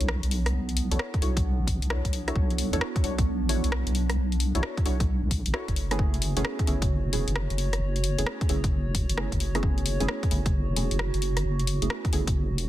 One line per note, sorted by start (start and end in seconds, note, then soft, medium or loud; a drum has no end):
0.00 0.20 B1 loud
0.00 6.46 B3 medium
0.00 0.88 D4 medium
0.00 5.76 D4 medium
0.00 0.88 E4 medium
0.00 0.88 F#4 medium
0.00 0.88 A4 medium
0.00 0.88 C#5 medium
0.00 closed hi-hat medium
0.08 cross-stick loud
0.23 0.52 B1 medium
0.23 closed hi-hat soft
0.31 open hi-hat medium
0.46 cross-stick medium
0.46 closed hi-hat medium
0.54 0.89 B1 loud
0.69 closed hi-hat soft
0.77 open hi-hat loud
0.91 0.98 B1 medium
0.91 1.20 D4 medium
0.91 1.20 E4 medium
0.91 1.20 F#4 medium
0.91 1.20 A4 medium
0.91 1.20 C#5 medium
0.91 closed hi-hat medium
0.99 cross-stick loud
1.14 kick loud
1.14 closed hi-hat soft
1.22 1.61 B1 loud
1.22 1.31 D4 medium
1.22 1.31 E4 medium
1.22 1.31 F#4 medium
1.22 1.31 A4 medium
1.22 1.31 C#5 loud
1.22 open hi-hat medium
1.37 kick loud
1.37 closed hi-hat medium
1.59 1.79 A1 loud
1.67 kick medium
1.67 open hi-hat loud
1.82 2.02 B1 medium
1.82 closed hi-hat medium
1.90 2.00 D4 medium
1.90 2.00 E4 medium
1.90 2.00 F#4 medium
1.90 2.00 A4 medium
1.90 2.00 C#5 loud
1.90 cross-stick loud
2.05 2.34 B1 medium
2.05 kick medium
2.05 closed hi-hat soft
2.13 open hi-hat medium
2.28 2.69 D4 medium
2.28 2.69 E4 medium
2.28 2.69 F#4 medium
2.28 2.69 A4 medium
2.28 2.69 C#5 loud
2.28 cross-stick medium
2.28 closed hi-hat medium
2.36 2.71 B1 medium
2.36 kick loud
2.50 closed hi-hat soft
2.58 open hi-hat loud
2.73 2.80 B1 medium
2.73 3.02 D4 loud
2.73 3.02 E4 medium
2.73 3.02 F#4 medium
2.73 3.02 A4 medium
2.73 3.02 C#5 loud
2.73 closed hi-hat medium
2.81 cross-stick loud
2.96 kick loud
2.96 closed hi-hat soft
3.04 3.43 B1 loud
3.04 3.13 D4 medium
3.04 3.13 E4 medium
3.04 3.13 F#4 medium
3.04 3.13 A4 medium
3.04 3.13 C#5 medium
3.04 open hi-hat medium
3.18 kick loud
3.18 closed hi-hat medium
3.41 3.61 A1 loud
3.49 4.51 D4 medium
3.49 4.51 E4 medium
3.49 4.51 F#4 medium
3.49 4.51 A4 medium
3.49 4.51 C#5 medium
3.49 open hi-hat loud
3.64 3.84 B1 medium
3.64 closed hi-hat medium
3.72 cross-stick loud
3.87 4.16 B1 medium
3.87 closed hi-hat soft
3.95 open hi-hat medium
4.10 cross-stick medium
4.10 closed hi-hat medium
4.17 4.52 B1 loud
4.32 closed hi-hat soft
4.40 open hi-hat loud
4.55 4.62 B1 loud
4.55 4.84 D4 medium
4.55 4.84 E4 medium
4.55 4.84 F#4 medium
4.55 4.84 A4 medium
4.55 4.84 C#5 medium
4.55 closed hi-hat medium
4.63 cross-stick loud
4.77 kick loud
4.77 closed hi-hat soft
4.85 5.21 B1 loud
4.85 4.95 D4 medium
4.85 4.95 E4 medium
4.85 4.95 F#4 medium
4.85 4.95 A4 medium
4.85 4.95 C#5 loud
4.85 open hi-hat medium
5.00 kick loud
5.00 closed hi-hat medium
5.23 5.43 B1 medium
5.31 kick medium
5.31 open hi-hat loud
5.46 5.53 A1 medium
5.46 closed hi-hat medium
5.54 5.63 D4 medium
5.54 5.63 E4 medium
5.54 5.63 F#4 medium
5.54 5.63 A4 medium
5.54 5.63 C#5 loud
5.54 cross-stick loud
5.68 5.98 F#1 medium
5.68 kick medium
5.68 closed hi-hat soft
5.76 12.69 F#4 medium
5.76 open hi-hat medium
5.91 6.33 A3 medium
5.91 6.33 B3 medium
5.91 6.33 C#4 medium
5.91 6.33 E4 medium
5.91 6.33 G#4 loud
5.91 cross-stick medium
5.91 closed hi-hat medium
5.99 6.34 F#1 loud
5.99 kick loud
6.05 12.69 C#5 medium
6.14 closed hi-hat soft
6.22 open hi-hat loud
6.36 6.44 F#1 loud
6.36 6.65 A3 loud
6.36 6.65 B3 medium
6.36 6.65 C#4 medium
6.36 6.65 E4 medium
6.36 6.65 G#4 loud
6.36 closed hi-hat medium
6.45 cross-stick loud
6.59 kick loud
6.59 closed hi-hat soft
6.67 7.06 F#1 loud
6.67 6.77 A3 medium
6.67 6.77 B3 medium
6.67 6.77 C#4 medium
6.67 6.77 E4 medium
6.67 6.77 G#4 medium
6.67 open hi-hat medium
6.82 kick loud
6.82 closed hi-hat medium
7.05 7.25 E1 loud
7.13 8.15 A3 medium
7.13 8.15 B3 medium
7.13 8.15 C#4 medium
7.13 8.15 E4 medium
7.13 8.15 G#4 medium
7.13 open hi-hat loud
7.28 7.47 F#1 loud
7.28 closed hi-hat medium
7.36 cross-stick loud
7.50 7.80 F#1 medium
7.50 closed hi-hat medium
7.58 open hi-hat medium
7.73 cross-stick medium
7.73 closed hi-hat medium
7.81 8.16 F#1 loud
7.96 closed hi-hat soft
8.04 open hi-hat loud
8.18 8.26 F#1 loud
8.18 8.47 A3 medium
8.18 8.47 B3 medium
8.18 8.47 C#4 medium
8.18 8.47 E4 medium
8.18 8.47 G#4 medium
8.18 closed hi-hat medium
8.26 cross-stick loud
8.41 kick loud
8.41 closed hi-hat soft
8.49 8.88 F#1 loud
8.49 8.59 A3 medium
8.49 8.59 B3 medium
8.49 8.59 C#4 medium
8.49 8.59 E4 medium
8.49 8.59 G#4 loud
8.49 open hi-hat medium
8.64 kick loud
8.64 closed hi-hat medium
8.87 9.06 E1 loud
8.95 kick medium
8.95 open hi-hat loud
9.09 9.29 F#1 medium
9.09 closed hi-hat medium
9.17 9.27 A3 medium
9.17 9.27 B3 medium
9.17 9.27 C#4 medium
9.17 9.27 E4 medium
9.17 9.27 G#4 medium
9.17 cross-stick loud
9.32 9.61 F#1 medium
9.32 kick medium
9.32 closed hi-hat medium
9.40 open hi-hat medium
9.55 9.97 A3 medium
9.55 9.97 B3 medium
9.55 9.97 C#4 medium
9.55 9.97 E4 medium
9.55 9.97 G#4 loud
9.55 cross-stick medium
9.55 closed hi-hat medium
9.63 9.98 F#1 loud
9.63 kick loud
9.78 closed hi-hat soft
9.86 open hi-hat loud
10.00 10.07 F#1 loud
10.00 10.29 A3 loud
10.00 10.29 B3 medium
10.00 10.29 C#4 medium
10.00 10.29 E4 medium
10.00 10.29 G#4 loud
10.00 closed hi-hat medium
10.08 cross-stick loud
10.23 kick loud
10.23 closed hi-hat soft
10.31 10.70 F#1 loud
10.31 10.40 A3 medium
10.31 10.40 B3 medium
10.31 10.40 C#4 medium
10.31 10.40 E4 medium
10.31 10.40 G#4 medium
10.31 open hi-hat medium
10.46 kick loud
10.46 closed hi-hat medium
10.69 10.88 E1 loud
10.76 11.79 A3 medium
10.76 11.79 B3 medium
10.76 11.79 C#4 medium
10.76 11.79 E4 medium
10.76 11.79 G#4 medium
10.76 open hi-hat loud
10.91 11.11 F#1 loud
10.91 closed hi-hat medium
10.99 cross-stick loud
11.14 11.43 F#1 medium
11.14 closed hi-hat medium
11.22 open hi-hat medium
11.37 cross-stick medium
11.37 closed hi-hat medium
11.45 11.80 F#1 medium
11.60 closed hi-hat soft
11.67 open hi-hat loud
11.82 11.89 F#1 loud
11.82 12.11 A3 medium
11.82 12.11 B3 medium
11.82 12.11 C#4 medium
11.82 12.11 E4 medium
11.82 12.11 G#4 medium
11.82 closed hi-hat medium
11.90 cross-stick loud
12.05 kick loud
12.05 closed hi-hat soft
12.13 12.52 F#1 loud
12.13 12.22 A3 medium
12.13 12.22 B3 medium
12.13 12.22 C#4 medium
12.13 12.22 E4 medium
12.13 12.22 G#4 loud
12.13 open hi-hat loud
12.27 kick loud
12.27 closed hi-hat medium
12.50 12.69 E1 loud
12.58 open hi-hat loud